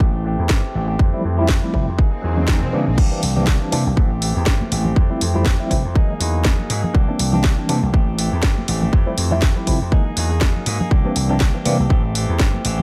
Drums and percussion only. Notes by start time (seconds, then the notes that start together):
0.00 kick
0.49 kick, snare
0.99 kick
1.48 kick, snare
1.74 kick
1.99 kick
2.48 kick, snare
2.98 kick, crash
3.23 open hi-hat
3.37 tambourine, low conga
3.47 kick, snare
3.72 open hi-hat, tambourine, high conga
3.86 tambourine
3.97 kick
4.10 tambourine
4.22 open hi-hat
4.35 tambourine
4.46 kick, snare
4.60 tambourine, high conga, low conga
4.72 open hi-hat, tambourine
4.85 tambourine, low conga
4.96 kick
5.11 tambourine
5.21 open hi-hat
5.34 tambourine, low conga
5.46 kick, snare
5.71 kick, open hi-hat
5.85 tambourine
5.96 kick
6.10 tambourine
6.21 open hi-hat
6.34 tambourine
6.45 kick, snare, tambourine, high conga
6.59 tambourine, low conga
6.70 open hi-hat, tambourine
6.84 tambourine, low conga
6.95 kick
7.08 tambourine
7.19 open hi-hat
7.33 tambourine, low conga
7.44 kick, snare
7.58 tambourine
7.69 open hi-hat, tambourine, high conga
7.82 tambourine
7.94 kick, tambourine
8.08 tambourine
8.19 open hi-hat
8.33 tambourine
8.43 kick, snare
8.57 tambourine, high conga, low conga
8.68 open hi-hat, tambourine
8.82 tambourine, low conga
8.93 kick
9.07 tambourine
9.18 open hi-hat, tambourine
9.31 tambourine, low conga
9.42 kick, snare
9.57 tambourine
9.67 kick, open hi-hat, tambourine
9.82 tambourine
9.92 kick
10.07 tambourine
10.17 open hi-hat
10.31 tambourine
10.41 kick, snare, tambourine, high conga
10.56 tambourine, low conga
10.66 open hi-hat, tambourine
10.80 tambourine, low conga
10.91 kick
11.05 tambourine
11.16 open hi-hat, tambourine
11.29 tambourine, low conga
11.40 kick, snare
11.65 open hi-hat, tambourine, high conga
11.80 tambourine
11.90 kick, tambourine
12.04 tambourine
12.15 open hi-hat, tambourine
12.29 tambourine
12.40 kick, snare
12.54 tambourine, high conga, low conga
12.65 open hi-hat, tambourine
12.79 tambourine, low conga